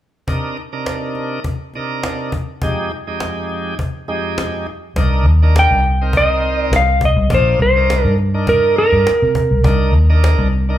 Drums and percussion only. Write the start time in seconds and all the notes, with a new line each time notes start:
0.28 cajon bass
0.57 cajon slap
0.86 cajon slap
1.15 cajon slap
1.44 cajon bass, cajon slap
1.74 cajon slap
2.03 cajon slap
2.32 cajon bass
2.62 cajon bass
2.91 cajon slap
3.20 cajon slap
3.49 cajon slap
3.79 cajon bass
4.08 cajon slap
4.38 cajon slap
4.66 cajon slap
4.96 cajon bass
5.13 cajon slap
5.26 cajon slap
5.56 cajon slap
5.84 cajon slap
6.13 cajon bass, cajon slap
6.43 cajon slap
6.73 cajon slap
7.01 cajon bass
7.30 cajon bass
7.60 cajon slap
7.90 cajon slap
8.18 cajon slap
8.47 cajon bass
8.64 cajon slap
8.77 cajon slap
9.07 cajon slap
9.35 cajon bass
9.64 cajon bass
9.95 cajon slap
10.24 cajon slap
10.53 cajon slap